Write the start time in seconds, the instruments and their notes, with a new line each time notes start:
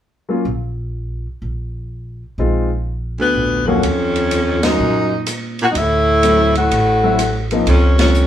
0.29 grand piano F#3 A#3 C#4 F4
0.45 upright bass A#1
1.42 upright bass A#1
2.38 upright bass A#1, grand piano G#3 C4 D#4 F4
3.19 baritone saxophone D2, tenor saxophone B3
3.35 upright bass A#1
3.64 grand piano D#2 F#3 A#3 C#4, baritone saxophone F2, tenor saxophone C#4
3.69 grand piano F#4
3.83 upright bass D#2, ride
4.16 ride
4.31 hi-hat pedal, ride
4.62 baritone saxophone F#2, tenor saxophone D#4, snare, ride
4.80 upright bass A#2
5.26 cross-stick, hi-hat pedal, ride
5.59 baritone saxophone A#2, ride
5.64 tenor saxophone F#4
5.71 upright bass D2, baritone saxophone F#2, tenor saxophone D#4, ride
5.78 baritone saxophone A2, tenor saxophone E4
6.23 grand piano F#3 A3 C4 E4, hi-hat pedal, ride
6.55 baritone saxophone A2, tenor saxophone F#4, ride
6.71 upright bass A1, ride
7.03 grand piano F#3 A3 C4 E4
7.19 cross-stick, hi-hat pedal, ride
7.51 grand piano F3 A#3 C4 D#4, ride
7.67 upright bass C#2, baritone saxophone F2, tenor saxophone C#4, ride
7.98 baritone saxophone F2, tenor saxophone C#4, snare, ride
8.14 hi-hat pedal